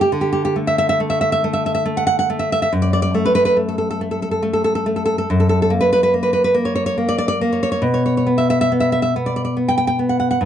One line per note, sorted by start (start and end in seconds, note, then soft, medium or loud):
0.01 0.11 G4 medium
0.12 2.67 D3 medium
0.21 0.31 G4 medium
0.33 0.44 G4 medium
0.45 0.55 G4 medium
0.56 0.99 A3 medium
0.67 0.77 E5 medium
0.78 0.88 E5 loud
0.89 1.00 E5 loud
1.00 1.43 A3 medium
1.10 1.20 E5 medium
1.21 1.31 E5 loud
1.32 1.43 E5 loud
1.44 1.84 A3 medium
1.53 1.64 E5 medium
1.66 1.73 E5 medium
1.75 1.86 E5 medium
1.85 2.28 A3 medium
1.97 2.05 F#5 loud
2.07 2.17 F#5 loud
2.19 2.29 F#5 loud
2.30 2.67 A3 medium
2.39 2.49 E5 medium
2.52 2.61 E5 loud
2.62 2.71 E5 loud
2.73 5.24 F#2 medium
2.82 2.92 D5 medium
2.93 3.01 D5 medium
3.02 3.13 D5 loud
3.14 3.55 A3 medium
3.25 3.34 B4 medium
3.35 3.44 B4 loud
3.45 3.56 B4 loud
3.57 4.00 A3 medium
3.68 3.77 A4 medium
3.78 3.89 A4 medium
3.91 4.00 A4 medium
4.01 4.41 A3 medium
4.11 4.21 A4 medium
4.22 4.30 A4 medium
4.31 4.42 A4 medium
4.43 4.85 A3 medium
4.53 4.63 A4 medium
4.64 4.74 A4 medium
4.75 4.85 A4 medium
4.86 5.24 A3 medium
4.96 5.04 A4 medium
5.06 5.16 A4 medium
5.18 5.28 A4 medium
5.30 7.81 F#2 medium
5.40 5.48 A4 medium
5.49 5.60 A4 medium
5.62 5.71 A4 medium
5.70 6.13 A#3 medium
5.81 5.91 B4 medium
5.93 6.02 B4 loud
6.03 6.13 B4 loud
6.14 6.53 A#3 medium
6.23 6.32 B4 medium
6.33 6.43 B4 medium
6.44 6.54 B4 medium
6.54 6.96 A#3 medium
6.65 6.74 C#5 medium
6.75 6.85 C#5 medium
6.86 6.97 C#5 medium
6.98 7.40 A#3 medium
7.09 7.17 D5 loud
7.18 7.27 D5 loud
7.28 7.39 D5 loud
7.41 7.80 A#3 medium
7.53 7.62 C#5 medium
7.63 7.71 C#5 medium
7.72 7.83 C#5 medium
7.82 10.36 B2 medium
7.94 8.04 C#5 medium
8.06 8.16 C#5 medium
8.17 8.28 C#5 medium
8.26 8.71 B3 medium
8.38 8.49 E5 medium
8.50 8.60 E5 loud
8.61 8.71 E5 loud
8.72 9.15 B3 medium
8.80 8.91 E5 medium
8.92 9.01 E5 medium
9.02 9.13 E5 medium
9.16 9.55 B3 medium
9.26 9.35 D5 medium
9.36 9.43 D5 medium
9.45 9.56 D5 medium
9.57 9.98 B3 medium
9.69 9.76 G5 medium
9.78 9.86 G5 loud
9.87 9.98 G5 loud
9.99 10.37 B3 medium
10.09 10.18 F#5 medium
10.20 10.29 F#5 medium
10.31 10.41 F#5 medium
10.41 10.45 G2 medium